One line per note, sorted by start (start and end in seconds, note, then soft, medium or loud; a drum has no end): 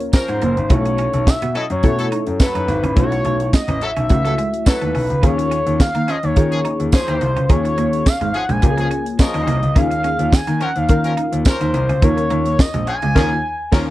0.00 0.23 A#3 medium
0.00 0.23 C#4 medium
0.00 0.23 F4 medium
0.00 0.23 A#4 medium
0.00 closed hi-hat medium
0.13 0.55 F3 medium
0.13 0.55 C#4 medium
0.13 0.55 A#4 loud
0.13 0.73 C5 medium
0.13 muted clean electric guitar stroke soft
0.13 kick loud
0.13 snare loud
0.13 clap medium
0.13 tambourine medium
0.28 0.39 G#2 loud
0.28 0.40 C#4 medium
0.28 closed hi-hat medium
0.42 0.53 F#1 loud
0.42 0.55 A#3 medium
0.42 closed hi-hat medium
0.57 0.67 G#1 loud
0.57 closed hi-hat soft
0.70 1.03 B1 loud
0.70 1.36 A3 medium
0.70 0.83 B3 medium
0.70 1.36 C#4 medium
0.70 1.36 E4 medium
0.70 1.36 F#4 medium
0.70 1.30 C#5 loud
0.70 kick loud
0.70 closed hi-hat medium
0.85 muted clean electric guitar stroke soft
0.85 closed hi-hat medium
0.98 1.11 C#4 medium
0.98 closed hi-hat medium
1.13 1.24 B1 loud
1.13 closed hi-hat medium
1.27 1.33 B2 soft
1.27 1.56 E5 loud
1.27 muted clean electric guitar stroke soft
1.27 kick loud
1.27 snare medium
1.27 clap medium
1.27 tambourine medium
1.42 1.52 B2 medium
1.42 1.53 B3 medium
1.42 closed hi-hat medium
1.55 1.65 F#3 medium
1.55 1.68 C#4 medium
1.55 1.65 E4 loud
1.55 1.65 A4 loud
1.55 1.64 D#5 loud
1.55 closed hi-hat medium
1.70 1.80 F#2 loud
1.70 2.24 C#5 loud
1.70 closed hi-hat soft
1.83 2.05 B2 loud
1.83 2.49 A3 medium
1.83 2.49 C#4 medium
1.83 2.50 E4 medium
1.83 2.50 A4 medium
1.83 kick loud
1.83 closed hi-hat medium
1.98 2.07 F#3 medium
1.98 2.07 E4 medium
1.98 2.07 A4 loud
1.98 closed hi-hat medium
2.12 2.24 D#4 medium
2.12 closed hi-hat medium
2.27 2.37 F#2 medium
2.27 closed hi-hat medium
2.40 2.81 F#3 medium
2.40 2.82 E4 medium
2.40 2.81 A4 loud
2.40 2.94 B4 loud
2.40 kick loud
2.40 snare loud
2.40 clap medium
2.40 tambourine medium
2.55 2.65 F#2 medium
2.55 2.66 D#4 medium
2.55 closed hi-hat medium
2.68 2.79 G#1 loud
2.68 muted clean electric guitar stroke soft
2.68 closed hi-hat medium
2.83 2.93 A1 medium
2.83 2.95 C#4 medium
2.83 closed hi-hat medium
2.96 3.18 B1 loud
2.96 3.62 A3 medium
2.96 3.10 B3 medium
2.96 3.62 C#4 medium
2.96 3.63 E4 medium
2.96 3.04 F4 medium
2.96 3.50 C#5 loud
2.96 kick loud
2.96 closed hi-hat medium
3.03 3.66 F#4 medium
3.12 muted clean electric guitar stroke soft
3.12 closed hi-hat medium
3.25 3.46 B1 loud
3.25 3.38 A3 medium
3.25 closed hi-hat medium
3.40 closed hi-hat medium
3.53 3.85 D#5 medium
3.53 kick loud
3.53 snare loud
3.53 clap medium
3.53 tambourine loud
3.68 3.78 A1 loud
3.68 3.80 C#4 medium
3.68 closed hi-hat medium
3.81 3.91 F#3 loud
3.81 3.91 E4 loud
3.81 3.91 A4 loud
3.81 4.68 E5 loud
3.81 muted clean electric guitar stroke soft
3.81 closed hi-hat medium
3.96 4.07 B1 loud
3.96 4.08 C#4 medium
3.96 closed hi-hat soft
4.09 4.31 C#2 loud
4.09 4.76 A3 medium
4.09 4.76 C#4 medium
4.09 4.76 E4 medium
4.09 4.76 F#4 medium
4.09 muted clean electric guitar stroke soft
4.09 kick loud
4.09 closed hi-hat medium
4.25 4.34 F#3 medium
4.25 4.36 A3 medium
4.25 4.34 E4 medium
4.25 4.33 A4 medium
4.25 closed hi-hat medium
4.38 4.51 G#3 medium
4.38 closed hi-hat medium
4.54 closed hi-hat medium
4.66 5.08 F#3 loud
4.66 5.08 E4 medium
4.66 5.08 A4 loud
4.66 5.26 B4 medium
4.66 muted clean electric guitar stroke soft
4.66 kick loud
4.66 snare loud
4.66 clap medium
4.66 tambourine loud
4.82 4.92 D#2 medium
4.82 4.93 A3 medium
4.82 closed hi-hat medium
4.95 5.06 B1 medium
4.95 5.07 C#4 medium
4.95 open hi-hat medium
5.10 5.20 C#2 loud
5.10 closed hi-hat soft
5.23 5.55 D#2 loud
5.23 5.89 A#3 medium
5.23 5.89 C#4 medium
5.23 5.36 D#4 medium
5.23 5.89 F4 medium
5.23 5.89 G#4 medium
5.23 5.81 C#5 loud
5.23 kick loud
5.23 closed hi-hat medium
5.38 muted clean electric guitar stroke soft
5.38 closed hi-hat medium
5.51 5.64 C#4 medium
5.51 closed hi-hat medium
5.66 5.76 D#2 loud
5.66 closed hi-hat medium
5.80 5.86 D#3 soft
5.80 6.11 F5 loud
5.80 muted clean electric guitar stroke soft
5.80 kick loud
5.80 snare loud
5.80 clap medium
5.80 tambourine medium
5.95 6.05 D#3 medium
5.95 6.06 A#3 medium
5.95 closed hi-hat medium
6.08 6.18 F3 loud
6.08 6.18 C#4 loud
6.08 6.21 C#4 medium
6.08 6.18 G#4 loud
6.08 6.26 D#5 loud
6.08 closed hi-hat medium
6.23 6.33 D#2 loud
6.23 6.80 C#5 loud
6.23 closed hi-hat soft
6.36 6.58 D#3 loud
6.36 7.02 A#3 medium
6.36 7.02 C#4 medium
6.36 7.02 F4 medium
6.36 7.02 G#4 medium
6.36 kick loud
6.36 closed hi-hat loud
6.51 6.60 F3 medium
6.51 6.60 C#4 medium
6.51 6.60 G#4 loud
6.51 closed hi-hat medium
6.65 6.77 D#4 medium
6.65 closed hi-hat medium
6.80 6.90 D#2 medium
6.80 closed hi-hat medium
6.92 7.34 F3 loud
6.92 7.34 C#4 medium
6.92 7.34 G#4 loud
6.92 7.53 C5 loud
6.92 kick loud
6.92 snare loud
6.92 clap medium
6.92 tambourine medium
7.08 7.18 D#2 medium
7.08 7.19 D#4 medium
7.08 closed hi-hat medium
7.21 7.32 C2 loud
7.21 muted clean electric guitar stroke soft
7.21 closed hi-hat medium
7.36 7.46 C#2 medium
7.36 7.48 C#4 medium
7.36 closed hi-hat soft
7.49 7.71 D#2 loud
7.49 8.15 A#3 medium
7.49 8.15 C#4 medium
7.49 7.62 D#4 medium
7.49 8.15 F4 medium
7.49 8.16 G#4 medium
7.49 8.09 C#5 loud
7.49 kick loud
7.49 closed hi-hat medium
7.65 muted clean electric guitar stroke soft
7.65 closed hi-hat medium
7.77 7.99 D#2 medium
7.77 7.90 A#3 medium
7.77 closed hi-hat medium
7.93 closed hi-hat medium
8.06 8.37 F5 loud
8.06 kick loud
8.06 snare loud
8.06 clap medium
8.06 tambourine loud
8.21 8.31 G#1 medium
8.21 8.32 G#3 medium
8.21 closed hi-hat medium
8.34 8.44 F3 medium
8.34 8.44 C#4 loud
8.34 8.44 G#4 loud
8.34 8.52 F#5 loud
8.34 muted clean electric guitar stroke soft
8.34 closed hi-hat medium
8.49 8.59 A#1 medium
8.49 8.60 G#3 medium
8.49 9.07 G#5 loud
8.49 closed hi-hat medium
8.62 8.84 C#2 loud
8.62 9.29 A#3 medium
8.62 9.29 C#4 medium
8.62 9.29 F4 medium
8.62 8.70 G4 medium
8.62 muted clean electric guitar stroke soft
8.62 kick loud
8.62 closed hi-hat medium
8.70 9.32 G#4 medium
8.77 8.87 F3 medium
8.77 8.89 A#3 medium
8.77 8.87 C#4 medium
8.77 8.87 G#4 medium
8.77 closed hi-hat medium
8.91 9.03 C#4 medium
8.91 closed hi-hat medium
9.06 closed hi-hat medium
9.19 9.61 F3 loud
9.19 9.61 C#4 medium
9.19 9.61 A#4 loud
9.19 9.79 D#5 loud
9.19 muted clean electric guitar stroke soft
9.19 kick loud
9.19 snare loud
9.19 clap medium
9.19 tambourine medium
9.34 9.44 D#2 medium
9.34 9.45 C#4 medium
9.34 closed hi-hat medium
9.47 9.58 C2 loud
9.47 9.60 A#3 medium
9.47 closed hi-hat medium
9.62 9.72 C#2 loud
9.62 closed hi-hat soft
9.76 10.08 D#2 loud
9.76 10.42 A#3 medium
9.76 10.42 C#4 medium
9.76 9.88 D#4 medium
9.76 10.42 F4 medium
9.76 10.42 G#4 medium
9.76 10.35 F5 loud
9.76 kick loud
9.76 closed hi-hat medium
9.91 muted clean electric guitar stroke soft
9.91 closed hi-hat medium
10.04 10.17 C#4 medium
10.04 closed hi-hat medium
10.19 10.29 D#2 loud
10.19 closed hi-hat medium
10.32 10.39 D#3 soft
10.32 10.63 G#5 loud
10.32 muted clean electric guitar stroke soft
10.32 kick loud
10.32 snare medium
10.32 clap medium
10.32 tambourine medium
10.47 10.57 D#3 loud
10.47 10.59 A#3 medium
10.47 closed hi-hat medium
10.61 10.71 F3 loud
10.61 10.70 C#4 loud
10.61 10.73 C#4 medium
10.61 10.70 A#4 loud
10.61 10.79 F#5 loud
10.61 closed hi-hat medium
10.76 10.86 D#2 loud
10.76 11.33 F5 loud
10.76 closed hi-hat soft
10.89 11.11 D#3 loud
10.89 11.55 A#3 medium
10.89 11.55 C#4 medium
10.89 11.55 F4 medium
10.89 11.56 A#4 medium
10.89 kick loud
10.89 closed hi-hat medium
11.04 11.13 F3 medium
11.04 11.13 C#4 loud
11.04 11.13 A#4 loud
11.04 closed hi-hat medium
11.17 11.30 D#4 medium
11.17 closed hi-hat medium
11.32 11.42 D#2 loud
11.32 closed hi-hat medium
11.45 11.87 F3 medium
11.45 11.87 C#4 medium
11.45 11.87 A#4 loud
11.45 12.05 C5 loud
11.45 kick loud
11.45 snare loud
11.45 clap medium
11.45 tambourine medium
11.61 11.71 D#2 loud
11.61 11.72 D#4 medium
11.61 closed hi-hat medium
11.74 11.85 C2 loud
11.74 muted clean electric guitar stroke soft
11.74 closed hi-hat medium
11.89 11.99 C#2 loud
11.89 12.00 C#4 medium
11.89 closed hi-hat soft
12.02 12.23 D#2 loud
12.02 12.69 A#3 medium
12.02 12.69 C#4 medium
12.02 12.15 D#4 medium
12.02 12.69 F4 medium
12.02 12.69 A#4 medium
12.02 12.46 C#5 loud
12.02 kick loud
12.02 closed hi-hat medium
12.17 muted clean electric guitar stroke soft
12.17 closed hi-hat medium
12.30 12.52 D#2 loud
12.30 12.43 A#3 medium
12.30 closed hi-hat medium
12.46 12.61 C#5 loud
12.46 closed hi-hat medium
12.59 12.87 D#5 medium
12.59 kick loud
12.59 snare loud
12.59 clap medium
12.59 tambourine medium
12.74 12.84 A#1 medium
12.74 12.85 G#3 medium
12.74 closed hi-hat medium
12.87 12.97 F3 loud
12.87 12.97 C#4 medium
12.87 12.97 G#4 loud
12.87 13.90 G#5 loud
12.87 muted clean electric guitar stroke soft
12.87 closed hi-hat medium
13.02 13.12 C#2 loud
13.02 13.14 G#3 medium
13.02 closed hi-hat medium
13.15 13.35 D#2 loud
13.15 13.30 F3 loud
13.15 13.35 A#3 loud
13.15 13.30 C#4 loud
13.15 13.35 C#4 loud
13.15 13.35 F4 loud
13.15 13.30 G#4 loud
13.15 13.35 A#4 loud
13.15 kick loud
13.15 snare medium
13.15 crash medium
13.72 13.90 D#2 medium
13.72 13.87 F3 loud
13.72 13.90 A#3 loud
13.72 13.90 C#4 loud
13.72 13.87 C#4 loud
13.72 13.90 F4 medium
13.72 13.87 A#4 loud
13.72 13.90 A#4 medium
13.72 kick loud
13.72 snare loud
13.72 crash medium